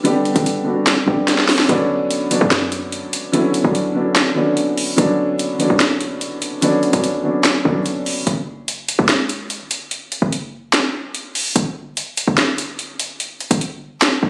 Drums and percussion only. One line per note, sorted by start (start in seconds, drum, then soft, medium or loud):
0.05 closed hi-hat medium
0.25 closed hi-hat soft
0.36 closed hi-hat medium
0.46 closed hi-hat medium
0.87 finger snap medium
0.87 snare loud
0.87 closed hi-hat medium
1.28 snare medium
1.28 closed hi-hat medium
1.38 snare medium
1.49 snare medium
1.49 open hi-hat medium
1.59 snare medium
1.69 closed hi-hat medium
2.11 closed hi-hat medium
2.31 closed hi-hat medium
2.51 finger snap medium
2.51 snare loud
2.51 closed hi-hat medium
2.72 closed hi-hat medium
2.92 closed hi-hat medium
3.13 closed hi-hat medium
3.34 closed hi-hat medium
3.54 closed hi-hat medium
3.75 closed hi-hat medium
4.16 finger snap medium
4.16 snare loud
4.16 closed hi-hat medium
4.57 closed hi-hat medium
4.78 open hi-hat medium
4.98 closed hi-hat medium
5.39 closed hi-hat medium
5.60 closed hi-hat medium
5.80 finger snap medium
5.80 snare loud
5.80 closed hi-hat medium
6.01 closed hi-hat medium
6.21 closed hi-hat medium
6.42 closed hi-hat medium
6.62 closed hi-hat medium
6.83 closed hi-hat soft
6.93 closed hi-hat medium
7.04 closed hi-hat medium
7.45 finger snap medium
7.45 snare loud
7.45 closed hi-hat medium
7.86 closed hi-hat medium
8.06 open hi-hat medium
8.27 closed hi-hat medium
8.68 closed hi-hat medium
8.88 closed hi-hat medium
9.09 finger snap medium
9.09 snare loud
9.09 closed hi-hat medium
9.29 closed hi-hat medium
9.50 closed hi-hat medium
9.71 closed hi-hat medium
9.91 closed hi-hat medium
10.12 closed hi-hat medium
10.33 closed hi-hat medium
10.73 finger snap medium
10.73 snare medium
10.73 closed hi-hat medium
11.15 closed hi-hat medium
11.35 open hi-hat medium
11.56 closed hi-hat medium
11.97 closed hi-hat medium
12.17 closed hi-hat medium
12.38 finger snap medium
12.38 snare loud
12.38 closed hi-hat medium
12.58 closed hi-hat medium
12.79 closed hi-hat medium
13.00 closed hi-hat medium
13.20 closed hi-hat medium
13.40 closed hi-hat soft
13.51 closed hi-hat medium
13.61 closed hi-hat medium
14.02 finger snap medium
14.02 snare loud
14.02 closed hi-hat medium